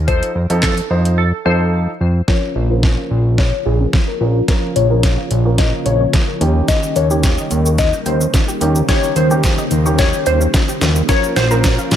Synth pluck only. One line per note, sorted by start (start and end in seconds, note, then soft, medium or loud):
0.00 0.10 A#4 medium
0.08 0.59 C5 loud
0.63 1.17 A4 medium
1.18 1.97 A4 medium
1.46 2.24 C5 medium
2.28 2.41 C#5 medium
2.56 3.41 C5 medium
3.38 3.67 C#5 medium
3.66 4.51 G#4 medium
4.48 4.61 A#4 medium
4.76 5.61 C#5 medium
5.59 5.87 D#5 medium
5.86 6.71 C#5 loud
6.68 6.97 D#5 loud
6.96 7.81 C#5 medium
7.79 8.07 D#5 medium
8.06 8.91 C5 medium
8.89 9.17 C#5 loud
9.16 9.95 C5 medium
9.99 10.27 C#5 medium
10.27 11.11 C5 loud
11.09 11.37 C#5 loud
11.36 11.96 C5 loud